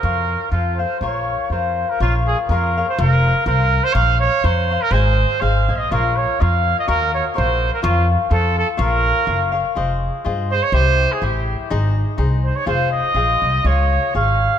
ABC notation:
X:1
M:2/4
L:1/16
Q:"Swing" 1/4=123
K:Bbm
V:1 name="Cavaquinho"
[FBdf]4 [F=Acf]2 [Acf]2 | [FBdf]4 [FBf]4 | [FBdf]4 [FBdf]2 [Bdf]2 | [FBcf]4 [FBcf]4 |
[dfbc']4 [dfbc']2 [fbc']2 | [Acea]4 [Acea]2 [cea]2 | [FBdf]4 [FBdf]4 | [GBef]4 [GBef]4 |
[FBdf]4 [F=Acf]4 | [FBdf]4 [FBdf]2 [Bdf]2 | [K:Fm] [FAce]4 [FAce]2 [Ace]2 | [=EGc=e]4 [EGce]4 |
[EAce]4 [EAce]4 | [FAcf]4 [FAcf]4 | [FAdf]4 [FAdf]4 |]
V:2 name="Trumpet"
B4 F2 c2 | d4 c3 B | F2 A2 B3 c | B4 B3 c |
f2 d2 c3 B | c4 f3 e | B2 d2 f3 e | B2 d2 c3 B |
F2 z2 =A2 A2 | B6 z2 | [K:Fm] z6 c d | c3 A G3 z |
z6 c d | c2 e6 | d4 f4 |]
V:3 name="Upright bass" clef=bass
F,,4 F,,4 | B,,,4 F,,4 | B,,,4 F,,4 | F,,,4 C,,4 |
B,,,4 F,,4 | A,,,4 A,,,2 B,,,2 | B,,,4 F,,4 | E,,4 B,,,4 |
F,,4 F,,4 | B,,,4 G,,,4 | [K:Fm] F,,,4 G,,4 | C,,4 =A,,,4 |
A,,,4 C,,4 | F,,,4 B,,,2 C,,2 | D,,4 A,,,4 |]